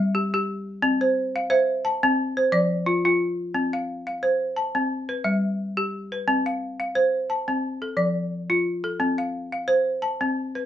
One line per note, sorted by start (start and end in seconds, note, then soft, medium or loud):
0.00 0.16 G3 medium
0.00 0.34 E5 medium
0.15 0.33 G4 medium
0.34 0.68 G4 medium
0.82 1.17 C4 medium
1.01 1.49 C5 medium
1.36 1.85 F5 medium
1.50 1.84 C5 medium
1.50 2.03 E5 medium
1.85 2.37 A5 medium
2.03 2.18 C4 medium
2.37 2.86 C5 medium
2.52 2.86 F3 medium
2.52 3.05 D5 medium
2.86 3.04 F4 medium
3.05 3.39 F4 medium
3.54 3.88 C4 medium
3.73 4.06 F5 medium
4.07 4.56 F5 medium
4.23 4.56 C5 medium
4.56 5.09 A5 medium
4.75 4.90 C4 medium
5.09 5.58 B4 medium
5.24 5.58 G3 medium
5.24 5.77 E5 medium
5.77 6.11 G4 medium
6.12 6.46 B4 medium
6.28 6.61 C4 medium
6.46 6.78 F5 medium
6.80 7.29 F5 medium
6.95 7.48 C5 medium
7.30 7.82 A5 medium
7.48 7.63 C4 medium
7.82 8.31 A4 medium
7.97 8.31 F3 medium
7.97 8.50 D5 medium
8.50 8.84 F4 medium
8.84 9.18 A4 medium
9.00 9.34 C4 medium
9.18 9.51 F5 medium
9.52 10.02 F5 medium
9.68 10.21 C5 medium
10.02 10.55 A5 medium
10.21 10.36 C4 medium
10.55 10.66 B4 medium